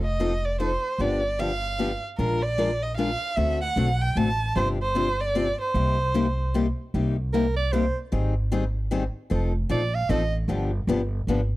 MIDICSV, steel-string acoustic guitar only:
0, 0, Header, 1, 2, 480
1, 0, Start_track
1, 0, Key_signature, -3, "minor"
1, 0, Tempo, 395778
1, 1206, Time_signature, 3, 2, 24, 8
1, 14025, End_track
2, 0, Start_track
2, 0, Title_t, "Steel-string acoustic guitar"
2, 0, Program_c, 0, 25
2, 240, Note_on_c, 0, 53, 83
2, 243, Note_on_c, 0, 60, 75
2, 248, Note_on_c, 0, 63, 86
2, 253, Note_on_c, 0, 69, 88
2, 377, Note_off_c, 0, 53, 0
2, 378, Note_off_c, 0, 60, 0
2, 381, Note_off_c, 0, 63, 0
2, 383, Note_off_c, 0, 69, 0
2, 723, Note_on_c, 0, 53, 68
2, 725, Note_on_c, 0, 60, 76
2, 728, Note_on_c, 0, 63, 85
2, 735, Note_on_c, 0, 69, 85
2, 859, Note_off_c, 0, 53, 0
2, 860, Note_off_c, 0, 60, 0
2, 862, Note_off_c, 0, 63, 0
2, 865, Note_off_c, 0, 69, 0
2, 1206, Note_on_c, 0, 50, 58
2, 1211, Note_on_c, 0, 59, 60
2, 1213, Note_on_c, 0, 53, 65
2, 1214, Note_on_c, 0, 67, 70
2, 1215, Note_on_c, 0, 62, 68
2, 1461, Note_off_c, 0, 50, 0
2, 1464, Note_off_c, 0, 59, 0
2, 1465, Note_off_c, 0, 53, 0
2, 1466, Note_off_c, 0, 62, 0
2, 1466, Note_off_c, 0, 67, 0
2, 1684, Note_on_c, 0, 50, 72
2, 1690, Note_on_c, 0, 53, 79
2, 1691, Note_on_c, 0, 59, 84
2, 1691, Note_on_c, 0, 62, 80
2, 1693, Note_on_c, 0, 67, 83
2, 1821, Note_off_c, 0, 50, 0
2, 1824, Note_off_c, 0, 53, 0
2, 1824, Note_off_c, 0, 59, 0
2, 1824, Note_off_c, 0, 62, 0
2, 1825, Note_off_c, 0, 67, 0
2, 2165, Note_on_c, 0, 50, 68
2, 2169, Note_on_c, 0, 53, 74
2, 2174, Note_on_c, 0, 59, 77
2, 2179, Note_on_c, 0, 62, 86
2, 2180, Note_on_c, 0, 67, 78
2, 2302, Note_off_c, 0, 50, 0
2, 2304, Note_off_c, 0, 53, 0
2, 2306, Note_off_c, 0, 59, 0
2, 2309, Note_off_c, 0, 62, 0
2, 2309, Note_off_c, 0, 67, 0
2, 2651, Note_on_c, 0, 56, 66
2, 2654, Note_on_c, 0, 53, 54
2, 2657, Note_on_c, 0, 62, 54
2, 2661, Note_on_c, 0, 65, 68
2, 2667, Note_on_c, 0, 70, 70
2, 2906, Note_off_c, 0, 56, 0
2, 2907, Note_off_c, 0, 53, 0
2, 2909, Note_off_c, 0, 62, 0
2, 2910, Note_off_c, 0, 65, 0
2, 2914, Note_off_c, 0, 70, 0
2, 3127, Note_on_c, 0, 53, 74
2, 3129, Note_on_c, 0, 56, 83
2, 3129, Note_on_c, 0, 62, 86
2, 3136, Note_on_c, 0, 65, 76
2, 3140, Note_on_c, 0, 70, 95
2, 3264, Note_off_c, 0, 53, 0
2, 3265, Note_off_c, 0, 56, 0
2, 3265, Note_off_c, 0, 62, 0
2, 3268, Note_off_c, 0, 65, 0
2, 3270, Note_off_c, 0, 70, 0
2, 3608, Note_on_c, 0, 53, 72
2, 3617, Note_on_c, 0, 56, 71
2, 3619, Note_on_c, 0, 62, 77
2, 3623, Note_on_c, 0, 65, 89
2, 3624, Note_on_c, 0, 70, 79
2, 3745, Note_off_c, 0, 53, 0
2, 3749, Note_off_c, 0, 56, 0
2, 3750, Note_off_c, 0, 62, 0
2, 3752, Note_off_c, 0, 65, 0
2, 3753, Note_off_c, 0, 70, 0
2, 4083, Note_on_c, 0, 50, 62
2, 4087, Note_on_c, 0, 57, 64
2, 4088, Note_on_c, 0, 60, 69
2, 4096, Note_on_c, 0, 66, 62
2, 4097, Note_on_c, 0, 69, 72
2, 4343, Note_off_c, 0, 50, 0
2, 4345, Note_off_c, 0, 57, 0
2, 4345, Note_off_c, 0, 60, 0
2, 4349, Note_off_c, 0, 66, 0
2, 4350, Note_off_c, 0, 69, 0
2, 4564, Note_on_c, 0, 50, 74
2, 4572, Note_on_c, 0, 57, 79
2, 4574, Note_on_c, 0, 60, 73
2, 4576, Note_on_c, 0, 66, 83
2, 4580, Note_on_c, 0, 69, 87
2, 4703, Note_off_c, 0, 50, 0
2, 4707, Note_off_c, 0, 57, 0
2, 4708, Note_off_c, 0, 60, 0
2, 4710, Note_off_c, 0, 66, 0
2, 4712, Note_off_c, 0, 69, 0
2, 5048, Note_on_c, 0, 50, 69
2, 5055, Note_on_c, 0, 57, 82
2, 5055, Note_on_c, 0, 66, 82
2, 5057, Note_on_c, 0, 60, 82
2, 5060, Note_on_c, 0, 69, 81
2, 5186, Note_off_c, 0, 50, 0
2, 5189, Note_off_c, 0, 57, 0
2, 5189, Note_off_c, 0, 66, 0
2, 5190, Note_off_c, 0, 60, 0
2, 5192, Note_off_c, 0, 69, 0
2, 5526, Note_on_c, 0, 48, 67
2, 5528, Note_on_c, 0, 53, 72
2, 5531, Note_on_c, 0, 60, 68
2, 5536, Note_on_c, 0, 62, 63
2, 5542, Note_on_c, 0, 67, 72
2, 5785, Note_off_c, 0, 48, 0
2, 5786, Note_off_c, 0, 53, 0
2, 5788, Note_off_c, 0, 60, 0
2, 5790, Note_off_c, 0, 62, 0
2, 5793, Note_off_c, 0, 67, 0
2, 6003, Note_on_c, 0, 48, 74
2, 6007, Note_on_c, 0, 60, 78
2, 6009, Note_on_c, 0, 53, 85
2, 6017, Note_on_c, 0, 62, 91
2, 6018, Note_on_c, 0, 67, 86
2, 6144, Note_off_c, 0, 48, 0
2, 6146, Note_off_c, 0, 60, 0
2, 6147, Note_off_c, 0, 53, 0
2, 6151, Note_off_c, 0, 62, 0
2, 6151, Note_off_c, 0, 67, 0
2, 6487, Note_on_c, 0, 48, 77
2, 6492, Note_on_c, 0, 60, 84
2, 6494, Note_on_c, 0, 53, 85
2, 6497, Note_on_c, 0, 62, 82
2, 6503, Note_on_c, 0, 67, 97
2, 6626, Note_off_c, 0, 48, 0
2, 6628, Note_off_c, 0, 60, 0
2, 6629, Note_off_c, 0, 53, 0
2, 6631, Note_off_c, 0, 62, 0
2, 6634, Note_off_c, 0, 67, 0
2, 6966, Note_on_c, 0, 48, 61
2, 6975, Note_on_c, 0, 55, 62
2, 6978, Note_on_c, 0, 58, 67
2, 6980, Note_on_c, 0, 63, 73
2, 6982, Note_on_c, 0, 67, 76
2, 7226, Note_off_c, 0, 48, 0
2, 7230, Note_off_c, 0, 55, 0
2, 7232, Note_off_c, 0, 58, 0
2, 7233, Note_off_c, 0, 63, 0
2, 7234, Note_off_c, 0, 67, 0
2, 7451, Note_on_c, 0, 48, 94
2, 7452, Note_on_c, 0, 55, 90
2, 7458, Note_on_c, 0, 58, 86
2, 7459, Note_on_c, 0, 63, 96
2, 7464, Note_on_c, 0, 67, 94
2, 7588, Note_off_c, 0, 48, 0
2, 7588, Note_off_c, 0, 55, 0
2, 7591, Note_off_c, 0, 58, 0
2, 7592, Note_off_c, 0, 63, 0
2, 7594, Note_off_c, 0, 67, 0
2, 7935, Note_on_c, 0, 48, 84
2, 7943, Note_on_c, 0, 55, 80
2, 7944, Note_on_c, 0, 58, 84
2, 7945, Note_on_c, 0, 63, 88
2, 7948, Note_on_c, 0, 67, 87
2, 8070, Note_off_c, 0, 48, 0
2, 8074, Note_off_c, 0, 55, 0
2, 8075, Note_off_c, 0, 58, 0
2, 8075, Note_off_c, 0, 63, 0
2, 8077, Note_off_c, 0, 67, 0
2, 8419, Note_on_c, 0, 48, 63
2, 8420, Note_on_c, 0, 55, 65
2, 8425, Note_on_c, 0, 58, 70
2, 8429, Note_on_c, 0, 67, 68
2, 8430, Note_on_c, 0, 63, 65
2, 8671, Note_off_c, 0, 48, 0
2, 8672, Note_off_c, 0, 55, 0
2, 8675, Note_off_c, 0, 58, 0
2, 8677, Note_off_c, 0, 63, 0
2, 8677, Note_off_c, 0, 67, 0
2, 8899, Note_on_c, 0, 48, 77
2, 8903, Note_on_c, 0, 55, 78
2, 8904, Note_on_c, 0, 58, 79
2, 8909, Note_on_c, 0, 63, 85
2, 8912, Note_on_c, 0, 67, 91
2, 9032, Note_off_c, 0, 48, 0
2, 9034, Note_off_c, 0, 55, 0
2, 9034, Note_off_c, 0, 58, 0
2, 9037, Note_off_c, 0, 63, 0
2, 9038, Note_off_c, 0, 67, 0
2, 9374, Note_on_c, 0, 48, 85
2, 9374, Note_on_c, 0, 55, 84
2, 9380, Note_on_c, 0, 58, 85
2, 9383, Note_on_c, 0, 63, 95
2, 9385, Note_on_c, 0, 67, 87
2, 9509, Note_off_c, 0, 48, 0
2, 9509, Note_off_c, 0, 55, 0
2, 9512, Note_off_c, 0, 58, 0
2, 9513, Note_off_c, 0, 63, 0
2, 9514, Note_off_c, 0, 67, 0
2, 9845, Note_on_c, 0, 51, 64
2, 9848, Note_on_c, 0, 55, 66
2, 9850, Note_on_c, 0, 63, 77
2, 9853, Note_on_c, 0, 60, 65
2, 9855, Note_on_c, 0, 68, 69
2, 10104, Note_off_c, 0, 51, 0
2, 10105, Note_off_c, 0, 55, 0
2, 10106, Note_off_c, 0, 63, 0
2, 10107, Note_off_c, 0, 60, 0
2, 10109, Note_off_c, 0, 68, 0
2, 10328, Note_on_c, 0, 51, 85
2, 10331, Note_on_c, 0, 60, 96
2, 10332, Note_on_c, 0, 55, 77
2, 10340, Note_on_c, 0, 68, 92
2, 10342, Note_on_c, 0, 63, 89
2, 10465, Note_off_c, 0, 51, 0
2, 10467, Note_off_c, 0, 55, 0
2, 10467, Note_off_c, 0, 60, 0
2, 10471, Note_off_c, 0, 68, 0
2, 10472, Note_off_c, 0, 63, 0
2, 10805, Note_on_c, 0, 51, 86
2, 10812, Note_on_c, 0, 60, 97
2, 10816, Note_on_c, 0, 55, 81
2, 10817, Note_on_c, 0, 68, 91
2, 10820, Note_on_c, 0, 63, 89
2, 10943, Note_off_c, 0, 51, 0
2, 10947, Note_off_c, 0, 60, 0
2, 10948, Note_off_c, 0, 55, 0
2, 10949, Note_off_c, 0, 68, 0
2, 10950, Note_off_c, 0, 63, 0
2, 11277, Note_on_c, 0, 53, 77
2, 11282, Note_on_c, 0, 60, 60
2, 11289, Note_on_c, 0, 63, 78
2, 11292, Note_on_c, 0, 69, 76
2, 11538, Note_off_c, 0, 53, 0
2, 11541, Note_off_c, 0, 60, 0
2, 11544, Note_off_c, 0, 63, 0
2, 11545, Note_off_c, 0, 69, 0
2, 11757, Note_on_c, 0, 60, 87
2, 11758, Note_on_c, 0, 53, 86
2, 11763, Note_on_c, 0, 63, 90
2, 11769, Note_on_c, 0, 69, 96
2, 11898, Note_off_c, 0, 53, 0
2, 11898, Note_off_c, 0, 60, 0
2, 11901, Note_off_c, 0, 63, 0
2, 11904, Note_off_c, 0, 69, 0
2, 12241, Note_on_c, 0, 53, 86
2, 12247, Note_on_c, 0, 60, 91
2, 12249, Note_on_c, 0, 63, 93
2, 12257, Note_on_c, 0, 69, 94
2, 12379, Note_off_c, 0, 53, 0
2, 12382, Note_off_c, 0, 60, 0
2, 12383, Note_off_c, 0, 63, 0
2, 12387, Note_off_c, 0, 69, 0
2, 12717, Note_on_c, 0, 50, 75
2, 12723, Note_on_c, 0, 53, 68
2, 12726, Note_on_c, 0, 59, 66
2, 12727, Note_on_c, 0, 62, 70
2, 12730, Note_on_c, 0, 67, 81
2, 12976, Note_off_c, 0, 50, 0
2, 12979, Note_off_c, 0, 53, 0
2, 12980, Note_off_c, 0, 59, 0
2, 12981, Note_off_c, 0, 62, 0
2, 12982, Note_off_c, 0, 67, 0
2, 13201, Note_on_c, 0, 50, 76
2, 13202, Note_on_c, 0, 53, 91
2, 13209, Note_on_c, 0, 59, 88
2, 13214, Note_on_c, 0, 62, 96
2, 13214, Note_on_c, 0, 67, 96
2, 13338, Note_off_c, 0, 50, 0
2, 13338, Note_off_c, 0, 53, 0
2, 13342, Note_off_c, 0, 59, 0
2, 13344, Note_off_c, 0, 62, 0
2, 13344, Note_off_c, 0, 67, 0
2, 13683, Note_on_c, 0, 50, 77
2, 13685, Note_on_c, 0, 53, 86
2, 13690, Note_on_c, 0, 59, 91
2, 13694, Note_on_c, 0, 62, 95
2, 13696, Note_on_c, 0, 67, 82
2, 13818, Note_off_c, 0, 50, 0
2, 13819, Note_off_c, 0, 53, 0
2, 13821, Note_off_c, 0, 59, 0
2, 13823, Note_off_c, 0, 62, 0
2, 13824, Note_off_c, 0, 67, 0
2, 14025, End_track
0, 0, End_of_file